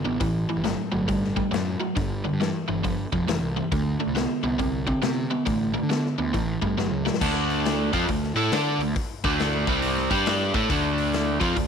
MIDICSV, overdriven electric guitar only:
0, 0, Header, 1, 2, 480
1, 0, Start_track
1, 0, Tempo, 436681
1, 230, Time_signature, 4, 2, 24, 8
1, 12831, End_track
2, 0, Start_track
2, 0, Title_t, "Overdriven electric guitar"
2, 0, Program_c, 0, 29
2, 51, Note_on_c, 0, 50, 76
2, 57, Note_on_c, 0, 59, 83
2, 209, Note_off_c, 0, 50, 0
2, 212, Note_off_c, 0, 59, 0
2, 223, Note_on_c, 0, 45, 81
2, 223, Note_on_c, 0, 52, 77
2, 505, Note_off_c, 0, 45, 0
2, 505, Note_off_c, 0, 52, 0
2, 538, Note_on_c, 0, 45, 69
2, 541, Note_on_c, 0, 52, 78
2, 690, Note_off_c, 0, 45, 0
2, 695, Note_off_c, 0, 52, 0
2, 703, Note_on_c, 0, 45, 87
2, 708, Note_on_c, 0, 54, 84
2, 986, Note_off_c, 0, 45, 0
2, 988, Note_off_c, 0, 54, 0
2, 1009, Note_on_c, 0, 45, 68
2, 1013, Note_on_c, 0, 54, 75
2, 1170, Note_off_c, 0, 45, 0
2, 1173, Note_off_c, 0, 54, 0
2, 1187, Note_on_c, 0, 45, 70
2, 1189, Note_on_c, 0, 55, 86
2, 1469, Note_off_c, 0, 45, 0
2, 1470, Note_off_c, 0, 55, 0
2, 1500, Note_on_c, 0, 45, 69
2, 1504, Note_on_c, 0, 55, 81
2, 1651, Note_off_c, 0, 45, 0
2, 1659, Note_off_c, 0, 55, 0
2, 1665, Note_on_c, 0, 45, 73
2, 1667, Note_on_c, 0, 54, 88
2, 1948, Note_off_c, 0, 45, 0
2, 1950, Note_off_c, 0, 54, 0
2, 1979, Note_on_c, 0, 45, 75
2, 1986, Note_on_c, 0, 54, 85
2, 2137, Note_off_c, 0, 45, 0
2, 2141, Note_off_c, 0, 54, 0
2, 2152, Note_on_c, 0, 43, 68
2, 2156, Note_on_c, 0, 50, 82
2, 2433, Note_off_c, 0, 43, 0
2, 2435, Note_off_c, 0, 50, 0
2, 2470, Note_on_c, 0, 43, 70
2, 2474, Note_on_c, 0, 50, 68
2, 2623, Note_off_c, 0, 43, 0
2, 2626, Note_off_c, 0, 50, 0
2, 2643, Note_on_c, 0, 43, 81
2, 2647, Note_on_c, 0, 52, 85
2, 2919, Note_off_c, 0, 43, 0
2, 2921, Note_off_c, 0, 52, 0
2, 2946, Note_on_c, 0, 43, 75
2, 2948, Note_on_c, 0, 52, 73
2, 3102, Note_off_c, 0, 43, 0
2, 3103, Note_off_c, 0, 52, 0
2, 3118, Note_on_c, 0, 43, 71
2, 3126, Note_on_c, 0, 53, 94
2, 3397, Note_off_c, 0, 43, 0
2, 3401, Note_off_c, 0, 53, 0
2, 3439, Note_on_c, 0, 43, 63
2, 3442, Note_on_c, 0, 53, 95
2, 3589, Note_off_c, 0, 43, 0
2, 3591, Note_off_c, 0, 53, 0
2, 3609, Note_on_c, 0, 43, 83
2, 3616, Note_on_c, 0, 52, 79
2, 3884, Note_off_c, 0, 43, 0
2, 3887, Note_off_c, 0, 52, 0
2, 3919, Note_on_c, 0, 43, 82
2, 3925, Note_on_c, 0, 52, 80
2, 4070, Note_off_c, 0, 43, 0
2, 4073, Note_off_c, 0, 52, 0
2, 4086, Note_on_c, 0, 50, 71
2, 4089, Note_on_c, 0, 57, 81
2, 4362, Note_off_c, 0, 50, 0
2, 4364, Note_off_c, 0, 57, 0
2, 4393, Note_on_c, 0, 50, 63
2, 4398, Note_on_c, 0, 57, 80
2, 4548, Note_off_c, 0, 50, 0
2, 4550, Note_off_c, 0, 57, 0
2, 4562, Note_on_c, 0, 50, 75
2, 4564, Note_on_c, 0, 59, 93
2, 4841, Note_off_c, 0, 50, 0
2, 4842, Note_off_c, 0, 59, 0
2, 4870, Note_on_c, 0, 50, 72
2, 4875, Note_on_c, 0, 59, 76
2, 5026, Note_off_c, 0, 50, 0
2, 5029, Note_off_c, 0, 59, 0
2, 5038, Note_on_c, 0, 50, 76
2, 5044, Note_on_c, 0, 60, 96
2, 5319, Note_off_c, 0, 50, 0
2, 5322, Note_off_c, 0, 60, 0
2, 5349, Note_on_c, 0, 50, 75
2, 5359, Note_on_c, 0, 60, 88
2, 5503, Note_off_c, 0, 50, 0
2, 5511, Note_off_c, 0, 60, 0
2, 5517, Note_on_c, 0, 50, 83
2, 5523, Note_on_c, 0, 59, 101
2, 5799, Note_off_c, 0, 50, 0
2, 5802, Note_off_c, 0, 59, 0
2, 5835, Note_on_c, 0, 50, 76
2, 5839, Note_on_c, 0, 59, 90
2, 5986, Note_off_c, 0, 50, 0
2, 5992, Note_off_c, 0, 59, 0
2, 5999, Note_on_c, 0, 50, 69
2, 6004, Note_on_c, 0, 57, 85
2, 6280, Note_off_c, 0, 50, 0
2, 6282, Note_off_c, 0, 57, 0
2, 6308, Note_on_c, 0, 50, 56
2, 6314, Note_on_c, 0, 57, 72
2, 6466, Note_off_c, 0, 50, 0
2, 6469, Note_off_c, 0, 57, 0
2, 6478, Note_on_c, 0, 50, 83
2, 6485, Note_on_c, 0, 59, 79
2, 6760, Note_off_c, 0, 50, 0
2, 6763, Note_off_c, 0, 59, 0
2, 6795, Note_on_c, 0, 50, 67
2, 6799, Note_on_c, 0, 59, 66
2, 6949, Note_off_c, 0, 50, 0
2, 6951, Note_off_c, 0, 59, 0
2, 6958, Note_on_c, 0, 45, 74
2, 6965, Note_on_c, 0, 52, 75
2, 7239, Note_off_c, 0, 45, 0
2, 7243, Note_off_c, 0, 52, 0
2, 7273, Note_on_c, 0, 45, 80
2, 7277, Note_on_c, 0, 55, 82
2, 7428, Note_off_c, 0, 45, 0
2, 7430, Note_off_c, 0, 55, 0
2, 7447, Note_on_c, 0, 45, 81
2, 7452, Note_on_c, 0, 54, 93
2, 7724, Note_off_c, 0, 45, 0
2, 7726, Note_off_c, 0, 54, 0
2, 7752, Note_on_c, 0, 45, 80
2, 7759, Note_on_c, 0, 54, 84
2, 7907, Note_off_c, 0, 45, 0
2, 7911, Note_off_c, 0, 54, 0
2, 7927, Note_on_c, 0, 50, 83
2, 7932, Note_on_c, 0, 57, 86
2, 7932, Note_on_c, 0, 62, 91
2, 8704, Note_off_c, 0, 50, 0
2, 8706, Note_off_c, 0, 57, 0
2, 8706, Note_off_c, 0, 62, 0
2, 8713, Note_on_c, 0, 53, 74
2, 8719, Note_on_c, 0, 60, 88
2, 8722, Note_on_c, 0, 65, 95
2, 8879, Note_off_c, 0, 53, 0
2, 8882, Note_off_c, 0, 60, 0
2, 8884, Note_off_c, 0, 65, 0
2, 8888, Note_on_c, 0, 50, 56
2, 8891, Note_on_c, 0, 57, 75
2, 9132, Note_off_c, 0, 50, 0
2, 9133, Note_off_c, 0, 57, 0
2, 9191, Note_on_c, 0, 57, 89
2, 9196, Note_on_c, 0, 64, 89
2, 9200, Note_on_c, 0, 69, 109
2, 9358, Note_off_c, 0, 57, 0
2, 9360, Note_off_c, 0, 64, 0
2, 9362, Note_off_c, 0, 69, 0
2, 9374, Note_on_c, 0, 62, 88
2, 9378, Note_on_c, 0, 69, 88
2, 9384, Note_on_c, 0, 74, 108
2, 9666, Note_off_c, 0, 62, 0
2, 9669, Note_off_c, 0, 69, 0
2, 9672, Note_off_c, 0, 74, 0
2, 9686, Note_on_c, 0, 50, 68
2, 9689, Note_on_c, 0, 57, 78
2, 9815, Note_off_c, 0, 50, 0
2, 9817, Note_off_c, 0, 57, 0
2, 10160, Note_on_c, 0, 50, 91
2, 10166, Note_on_c, 0, 57, 89
2, 10171, Note_on_c, 0, 62, 96
2, 10624, Note_off_c, 0, 50, 0
2, 10627, Note_off_c, 0, 57, 0
2, 10629, Note_off_c, 0, 62, 0
2, 10636, Note_on_c, 0, 48, 85
2, 10638, Note_on_c, 0, 55, 93
2, 10644, Note_on_c, 0, 60, 92
2, 11094, Note_off_c, 0, 55, 0
2, 11101, Note_off_c, 0, 48, 0
2, 11105, Note_off_c, 0, 60, 0
2, 11107, Note_on_c, 0, 55, 97
2, 11114, Note_on_c, 0, 62, 100
2, 11114, Note_on_c, 0, 67, 101
2, 11575, Note_off_c, 0, 55, 0
2, 11579, Note_off_c, 0, 62, 0
2, 11579, Note_off_c, 0, 67, 0
2, 11585, Note_on_c, 0, 57, 102
2, 11593, Note_on_c, 0, 64, 100
2, 11597, Note_on_c, 0, 69, 109
2, 11748, Note_off_c, 0, 57, 0
2, 11755, Note_off_c, 0, 64, 0
2, 11756, Note_off_c, 0, 69, 0
2, 11758, Note_on_c, 0, 50, 78
2, 11761, Note_on_c, 0, 57, 90
2, 11766, Note_on_c, 0, 62, 95
2, 12524, Note_off_c, 0, 50, 0
2, 12529, Note_on_c, 0, 53, 84
2, 12533, Note_off_c, 0, 57, 0
2, 12534, Note_off_c, 0, 62, 0
2, 12537, Note_on_c, 0, 60, 81
2, 12538, Note_on_c, 0, 65, 94
2, 12701, Note_off_c, 0, 53, 0
2, 12705, Note_off_c, 0, 60, 0
2, 12705, Note_off_c, 0, 65, 0
2, 12710, Note_on_c, 0, 50, 59
2, 12715, Note_on_c, 0, 57, 75
2, 12831, Note_off_c, 0, 50, 0
2, 12831, Note_off_c, 0, 57, 0
2, 12831, End_track
0, 0, End_of_file